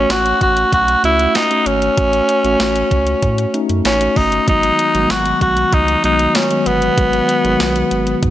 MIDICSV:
0, 0, Header, 1, 5, 480
1, 0, Start_track
1, 0, Tempo, 625000
1, 1518, Time_signature, 4, 2, 24, 8
1, 6377, End_track
2, 0, Start_track
2, 0, Title_t, "Tenor saxophone"
2, 0, Program_c, 0, 66
2, 0, Note_on_c, 0, 61, 108
2, 85, Note_on_c, 0, 66, 105
2, 96, Note_off_c, 0, 61, 0
2, 321, Note_off_c, 0, 66, 0
2, 325, Note_on_c, 0, 66, 100
2, 545, Note_off_c, 0, 66, 0
2, 564, Note_on_c, 0, 66, 105
2, 784, Note_off_c, 0, 66, 0
2, 804, Note_on_c, 0, 64, 100
2, 1043, Note_on_c, 0, 63, 99
2, 1054, Note_off_c, 0, 64, 0
2, 1283, Note_on_c, 0, 61, 105
2, 1294, Note_off_c, 0, 63, 0
2, 2753, Note_off_c, 0, 61, 0
2, 2964, Note_on_c, 0, 61, 95
2, 3203, Note_on_c, 0, 63, 97
2, 3215, Note_off_c, 0, 61, 0
2, 3440, Note_off_c, 0, 63, 0
2, 3447, Note_on_c, 0, 63, 104
2, 3924, Note_on_c, 0, 66, 98
2, 3935, Note_off_c, 0, 63, 0
2, 4159, Note_off_c, 0, 66, 0
2, 4163, Note_on_c, 0, 66, 92
2, 4405, Note_on_c, 0, 63, 96
2, 4416, Note_off_c, 0, 66, 0
2, 4641, Note_off_c, 0, 63, 0
2, 4646, Note_on_c, 0, 63, 92
2, 4886, Note_on_c, 0, 61, 94
2, 4897, Note_off_c, 0, 63, 0
2, 5124, Note_on_c, 0, 59, 98
2, 5136, Note_off_c, 0, 61, 0
2, 6353, Note_off_c, 0, 59, 0
2, 6377, End_track
3, 0, Start_track
3, 0, Title_t, "Tine electric piano"
3, 0, Program_c, 1, 4
3, 0, Control_c, 1, 64, 127
3, 0, Note_on_c, 1, 57, 80
3, 0, Note_on_c, 1, 61, 73
3, 0, Note_on_c, 1, 66, 90
3, 727, Note_off_c, 1, 57, 0
3, 730, Note_off_c, 1, 61, 0
3, 732, Note_off_c, 1, 66, 0
3, 792, Note_on_c, 1, 57, 75
3, 797, Note_on_c, 1, 61, 72
3, 802, Note_on_c, 1, 66, 86
3, 1125, Note_off_c, 1, 57, 0
3, 1128, Note_off_c, 1, 61, 0
3, 1130, Note_off_c, 1, 66, 0
3, 1154, Note_on_c, 1, 57, 75
3, 1159, Note_on_c, 1, 61, 73
3, 1163, Note_on_c, 1, 66, 84
3, 1487, Note_off_c, 1, 57, 0
3, 1489, Note_off_c, 1, 61, 0
3, 1491, Note_off_c, 1, 66, 0
3, 1514, Note_on_c, 1, 57, 70
3, 1518, Note_on_c, 1, 61, 64
3, 1523, Note_on_c, 1, 66, 83
3, 1846, Note_off_c, 1, 57, 0
3, 1849, Note_off_c, 1, 61, 0
3, 1851, Note_off_c, 1, 66, 0
3, 1873, Note_on_c, 1, 57, 94
3, 1878, Note_on_c, 1, 61, 90
3, 1882, Note_on_c, 1, 66, 104
3, 2647, Note_off_c, 1, 57, 0
3, 2650, Note_off_c, 1, 61, 0
3, 2652, Note_off_c, 1, 66, 0
3, 2715, Note_on_c, 1, 57, 90
3, 2720, Note_on_c, 1, 61, 79
3, 2724, Note_on_c, 1, 63, 102
3, 3047, Note_off_c, 1, 57, 0
3, 3049, Note_off_c, 1, 61, 0
3, 3051, Note_off_c, 1, 63, 0
3, 3076, Note_on_c, 1, 57, 73
3, 3080, Note_on_c, 1, 61, 69
3, 3085, Note_on_c, 1, 66, 84
3, 3407, Note_off_c, 1, 57, 0
3, 3410, Note_off_c, 1, 61, 0
3, 3412, Note_off_c, 1, 66, 0
3, 3436, Note_on_c, 1, 51, 72
3, 3438, Note_on_c, 1, 54, 65
3, 3441, Note_on_c, 1, 56, 62
3, 3443, Note_on_c, 1, 59, 64
3, 3446, Note_on_c, 1, 66, 79
3, 3447, Control_c, 1, 64, 0
3, 3601, Control_c, 1, 64, 127
3, 3767, Note_off_c, 1, 51, 0
3, 3768, Note_off_c, 1, 54, 0
3, 3770, Note_off_c, 1, 56, 0
3, 3771, Note_off_c, 1, 59, 0
3, 3772, Note_off_c, 1, 66, 0
3, 3796, Note_on_c, 1, 51, 81
3, 3798, Note_on_c, 1, 54, 75
3, 3800, Note_on_c, 1, 56, 77
3, 3803, Note_on_c, 1, 57, 59
3, 3805, Note_on_c, 1, 66, 88
3, 3850, Note_off_c, 1, 57, 0
3, 3853, Note_on_c, 1, 59, 70
3, 4569, Note_off_c, 1, 51, 0
3, 4570, Note_off_c, 1, 54, 0
3, 4570, Note_off_c, 1, 56, 0
3, 4573, Note_off_c, 1, 66, 0
3, 4597, Note_off_c, 1, 59, 0
3, 4635, Note_on_c, 1, 51, 70
3, 4637, Note_on_c, 1, 54, 68
3, 4640, Note_on_c, 1, 56, 67
3, 4641, Note_on_c, 1, 59, 70
3, 4644, Note_on_c, 1, 66, 80
3, 4967, Note_off_c, 1, 51, 0
3, 4968, Note_off_c, 1, 54, 0
3, 4969, Note_off_c, 1, 56, 0
3, 4970, Note_off_c, 1, 59, 0
3, 4971, Note_off_c, 1, 66, 0
3, 4995, Note_on_c, 1, 51, 73
3, 4997, Note_on_c, 1, 54, 72
3, 5000, Note_on_c, 1, 56, 67
3, 5002, Note_on_c, 1, 59, 70
3, 5005, Note_on_c, 1, 66, 85
3, 5327, Note_off_c, 1, 51, 0
3, 5328, Note_off_c, 1, 54, 0
3, 5329, Note_off_c, 1, 56, 0
3, 5331, Note_off_c, 1, 59, 0
3, 5332, Note_off_c, 1, 66, 0
3, 5354, Note_on_c, 1, 51, 71
3, 5358, Note_on_c, 1, 54, 62
3, 5359, Note_on_c, 1, 56, 68
3, 5363, Note_on_c, 1, 59, 69
3, 5365, Note_on_c, 1, 66, 80
3, 5687, Note_off_c, 1, 51, 0
3, 5688, Note_off_c, 1, 54, 0
3, 5689, Note_off_c, 1, 56, 0
3, 5691, Note_off_c, 1, 59, 0
3, 5692, Note_off_c, 1, 66, 0
3, 5714, Note_on_c, 1, 51, 95
3, 5716, Note_on_c, 1, 54, 87
3, 5718, Note_on_c, 1, 56, 86
3, 5720, Note_on_c, 1, 59, 87
3, 5724, Note_on_c, 1, 66, 105
3, 6377, Note_off_c, 1, 51, 0
3, 6377, Note_off_c, 1, 54, 0
3, 6377, Note_off_c, 1, 56, 0
3, 6377, Note_off_c, 1, 59, 0
3, 6377, Note_off_c, 1, 66, 0
3, 6377, End_track
4, 0, Start_track
4, 0, Title_t, "Analog synth bass"
4, 0, Program_c, 2, 38
4, 75, Note_on_c, 2, 33, 95
4, 256, Note_off_c, 2, 33, 0
4, 317, Note_on_c, 2, 33, 85
4, 497, Note_off_c, 2, 33, 0
4, 557, Note_on_c, 2, 35, 100
4, 737, Note_off_c, 2, 35, 0
4, 796, Note_on_c, 2, 37, 95
4, 976, Note_off_c, 2, 37, 0
4, 1276, Note_on_c, 2, 32, 94
4, 1456, Note_off_c, 2, 32, 0
4, 1517, Note_on_c, 2, 33, 111
4, 1697, Note_off_c, 2, 33, 0
4, 1876, Note_on_c, 2, 33, 89
4, 1967, Note_off_c, 2, 33, 0
4, 1996, Note_on_c, 2, 33, 97
4, 2177, Note_off_c, 2, 33, 0
4, 2237, Note_on_c, 2, 37, 99
4, 2417, Note_off_c, 2, 37, 0
4, 2477, Note_on_c, 2, 45, 103
4, 2657, Note_off_c, 2, 45, 0
4, 2838, Note_on_c, 2, 42, 97
4, 2928, Note_off_c, 2, 42, 0
4, 2958, Note_on_c, 2, 33, 93
4, 3138, Note_off_c, 2, 33, 0
4, 3198, Note_on_c, 2, 31, 99
4, 3378, Note_off_c, 2, 31, 0
4, 3438, Note_on_c, 2, 32, 109
4, 3618, Note_off_c, 2, 32, 0
4, 3799, Note_on_c, 2, 32, 89
4, 3888, Note_off_c, 2, 32, 0
4, 3919, Note_on_c, 2, 32, 94
4, 4098, Note_off_c, 2, 32, 0
4, 4156, Note_on_c, 2, 35, 97
4, 4337, Note_off_c, 2, 35, 0
4, 4397, Note_on_c, 2, 37, 100
4, 4577, Note_off_c, 2, 37, 0
4, 4639, Note_on_c, 2, 35, 91
4, 4818, Note_off_c, 2, 35, 0
4, 5118, Note_on_c, 2, 31, 101
4, 5298, Note_off_c, 2, 31, 0
4, 5357, Note_on_c, 2, 32, 110
4, 5537, Note_off_c, 2, 32, 0
4, 5718, Note_on_c, 2, 32, 85
4, 5808, Note_off_c, 2, 32, 0
4, 5838, Note_on_c, 2, 35, 97
4, 6018, Note_off_c, 2, 35, 0
4, 6079, Note_on_c, 2, 32, 95
4, 6258, Note_off_c, 2, 32, 0
4, 6317, Note_on_c, 2, 44, 107
4, 6377, Note_off_c, 2, 44, 0
4, 6377, End_track
5, 0, Start_track
5, 0, Title_t, "Drums"
5, 77, Note_on_c, 9, 38, 112
5, 77, Note_on_c, 9, 54, 72
5, 78, Note_on_c, 9, 42, 94
5, 154, Note_off_c, 9, 38, 0
5, 154, Note_off_c, 9, 54, 0
5, 155, Note_off_c, 9, 42, 0
5, 197, Note_on_c, 9, 42, 65
5, 274, Note_off_c, 9, 42, 0
5, 316, Note_on_c, 9, 36, 93
5, 317, Note_on_c, 9, 42, 74
5, 393, Note_off_c, 9, 36, 0
5, 394, Note_off_c, 9, 42, 0
5, 435, Note_on_c, 9, 42, 57
5, 512, Note_off_c, 9, 42, 0
5, 557, Note_on_c, 9, 36, 90
5, 558, Note_on_c, 9, 42, 83
5, 634, Note_off_c, 9, 36, 0
5, 635, Note_off_c, 9, 42, 0
5, 678, Note_on_c, 9, 42, 59
5, 754, Note_off_c, 9, 42, 0
5, 799, Note_on_c, 9, 42, 72
5, 875, Note_off_c, 9, 42, 0
5, 917, Note_on_c, 9, 42, 52
5, 994, Note_off_c, 9, 42, 0
5, 1037, Note_on_c, 9, 42, 98
5, 1037, Note_on_c, 9, 54, 70
5, 1040, Note_on_c, 9, 38, 123
5, 1114, Note_off_c, 9, 42, 0
5, 1114, Note_off_c, 9, 54, 0
5, 1117, Note_off_c, 9, 38, 0
5, 1158, Note_on_c, 9, 42, 57
5, 1235, Note_off_c, 9, 42, 0
5, 1277, Note_on_c, 9, 42, 77
5, 1354, Note_off_c, 9, 42, 0
5, 1397, Note_on_c, 9, 42, 53
5, 1474, Note_off_c, 9, 42, 0
5, 1517, Note_on_c, 9, 36, 105
5, 1517, Note_on_c, 9, 42, 94
5, 1594, Note_off_c, 9, 36, 0
5, 1594, Note_off_c, 9, 42, 0
5, 1637, Note_on_c, 9, 42, 59
5, 1713, Note_off_c, 9, 42, 0
5, 1757, Note_on_c, 9, 42, 76
5, 1834, Note_off_c, 9, 42, 0
5, 1878, Note_on_c, 9, 42, 48
5, 1955, Note_off_c, 9, 42, 0
5, 1996, Note_on_c, 9, 38, 113
5, 1997, Note_on_c, 9, 42, 96
5, 1997, Note_on_c, 9, 54, 72
5, 2073, Note_off_c, 9, 38, 0
5, 2073, Note_off_c, 9, 54, 0
5, 2074, Note_off_c, 9, 42, 0
5, 2117, Note_on_c, 9, 42, 64
5, 2193, Note_off_c, 9, 42, 0
5, 2237, Note_on_c, 9, 36, 97
5, 2238, Note_on_c, 9, 42, 70
5, 2313, Note_off_c, 9, 36, 0
5, 2315, Note_off_c, 9, 42, 0
5, 2355, Note_on_c, 9, 42, 52
5, 2432, Note_off_c, 9, 42, 0
5, 2477, Note_on_c, 9, 36, 84
5, 2477, Note_on_c, 9, 42, 83
5, 2554, Note_off_c, 9, 36, 0
5, 2554, Note_off_c, 9, 42, 0
5, 2598, Note_on_c, 9, 42, 57
5, 2675, Note_off_c, 9, 42, 0
5, 2719, Note_on_c, 9, 42, 69
5, 2796, Note_off_c, 9, 42, 0
5, 2837, Note_on_c, 9, 42, 52
5, 2914, Note_off_c, 9, 42, 0
5, 2957, Note_on_c, 9, 42, 102
5, 2957, Note_on_c, 9, 54, 69
5, 2960, Note_on_c, 9, 38, 120
5, 3034, Note_off_c, 9, 42, 0
5, 3034, Note_off_c, 9, 54, 0
5, 3037, Note_off_c, 9, 38, 0
5, 3078, Note_on_c, 9, 42, 58
5, 3155, Note_off_c, 9, 42, 0
5, 3197, Note_on_c, 9, 46, 77
5, 3198, Note_on_c, 9, 36, 85
5, 3274, Note_off_c, 9, 46, 0
5, 3275, Note_off_c, 9, 36, 0
5, 3318, Note_on_c, 9, 42, 51
5, 3395, Note_off_c, 9, 42, 0
5, 3438, Note_on_c, 9, 36, 113
5, 3439, Note_on_c, 9, 42, 90
5, 3515, Note_off_c, 9, 36, 0
5, 3516, Note_off_c, 9, 42, 0
5, 3558, Note_on_c, 9, 42, 59
5, 3635, Note_off_c, 9, 42, 0
5, 3679, Note_on_c, 9, 42, 76
5, 3756, Note_off_c, 9, 42, 0
5, 3799, Note_on_c, 9, 42, 48
5, 3876, Note_off_c, 9, 42, 0
5, 3917, Note_on_c, 9, 38, 112
5, 3918, Note_on_c, 9, 42, 94
5, 3918, Note_on_c, 9, 54, 69
5, 3994, Note_off_c, 9, 38, 0
5, 3995, Note_off_c, 9, 42, 0
5, 3995, Note_off_c, 9, 54, 0
5, 4036, Note_on_c, 9, 42, 65
5, 4113, Note_off_c, 9, 42, 0
5, 4157, Note_on_c, 9, 36, 93
5, 4158, Note_on_c, 9, 42, 70
5, 4234, Note_off_c, 9, 36, 0
5, 4235, Note_off_c, 9, 42, 0
5, 4276, Note_on_c, 9, 42, 53
5, 4352, Note_off_c, 9, 42, 0
5, 4397, Note_on_c, 9, 36, 90
5, 4397, Note_on_c, 9, 42, 90
5, 4474, Note_off_c, 9, 36, 0
5, 4474, Note_off_c, 9, 42, 0
5, 4517, Note_on_c, 9, 42, 57
5, 4594, Note_off_c, 9, 42, 0
5, 4638, Note_on_c, 9, 42, 70
5, 4714, Note_off_c, 9, 42, 0
5, 4757, Note_on_c, 9, 42, 56
5, 4833, Note_off_c, 9, 42, 0
5, 4876, Note_on_c, 9, 42, 99
5, 4876, Note_on_c, 9, 54, 66
5, 4879, Note_on_c, 9, 38, 123
5, 4953, Note_off_c, 9, 42, 0
5, 4953, Note_off_c, 9, 54, 0
5, 4956, Note_off_c, 9, 38, 0
5, 4996, Note_on_c, 9, 42, 59
5, 5073, Note_off_c, 9, 42, 0
5, 5116, Note_on_c, 9, 42, 81
5, 5193, Note_off_c, 9, 42, 0
5, 5238, Note_on_c, 9, 42, 51
5, 5314, Note_off_c, 9, 42, 0
5, 5358, Note_on_c, 9, 36, 117
5, 5358, Note_on_c, 9, 42, 91
5, 5434, Note_off_c, 9, 36, 0
5, 5434, Note_off_c, 9, 42, 0
5, 5477, Note_on_c, 9, 42, 54
5, 5554, Note_off_c, 9, 42, 0
5, 5598, Note_on_c, 9, 42, 76
5, 5675, Note_off_c, 9, 42, 0
5, 5719, Note_on_c, 9, 42, 45
5, 5796, Note_off_c, 9, 42, 0
5, 5837, Note_on_c, 9, 38, 114
5, 5838, Note_on_c, 9, 42, 93
5, 5838, Note_on_c, 9, 54, 74
5, 5914, Note_off_c, 9, 38, 0
5, 5915, Note_off_c, 9, 42, 0
5, 5915, Note_off_c, 9, 54, 0
5, 5957, Note_on_c, 9, 42, 64
5, 6034, Note_off_c, 9, 42, 0
5, 6077, Note_on_c, 9, 42, 72
5, 6154, Note_off_c, 9, 42, 0
5, 6196, Note_on_c, 9, 42, 53
5, 6273, Note_off_c, 9, 42, 0
5, 6318, Note_on_c, 9, 36, 85
5, 6318, Note_on_c, 9, 42, 81
5, 6377, Note_off_c, 9, 36, 0
5, 6377, Note_off_c, 9, 42, 0
5, 6377, End_track
0, 0, End_of_file